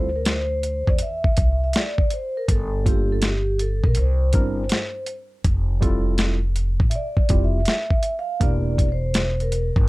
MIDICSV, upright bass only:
0, 0, Header, 1, 2, 480
1, 0, Start_track
1, 0, Tempo, 740741
1, 1611, Time_signature, 4, 2, 24, 8
1, 6406, End_track
2, 0, Start_track
2, 0, Title_t, "Upright bass"
2, 0, Program_c, 0, 32
2, 0, Note_on_c, 0, 38, 112
2, 539, Note_off_c, 0, 38, 0
2, 568, Note_on_c, 0, 40, 96
2, 643, Note_off_c, 0, 40, 0
2, 893, Note_on_c, 0, 36, 77
2, 1106, Note_off_c, 0, 36, 0
2, 1611, Note_on_c, 0, 31, 107
2, 2459, Note_off_c, 0, 31, 0
2, 2486, Note_on_c, 0, 34, 95
2, 2562, Note_off_c, 0, 34, 0
2, 2572, Note_on_c, 0, 36, 94
2, 2785, Note_off_c, 0, 36, 0
2, 2811, Note_on_c, 0, 31, 88
2, 3025, Note_off_c, 0, 31, 0
2, 3529, Note_on_c, 0, 29, 106
2, 4378, Note_off_c, 0, 29, 0
2, 4406, Note_on_c, 0, 33, 84
2, 4482, Note_off_c, 0, 33, 0
2, 4732, Note_on_c, 0, 29, 86
2, 4945, Note_off_c, 0, 29, 0
2, 5448, Note_on_c, 0, 28, 106
2, 6298, Note_off_c, 0, 28, 0
2, 6326, Note_on_c, 0, 31, 100
2, 6402, Note_off_c, 0, 31, 0
2, 6406, End_track
0, 0, End_of_file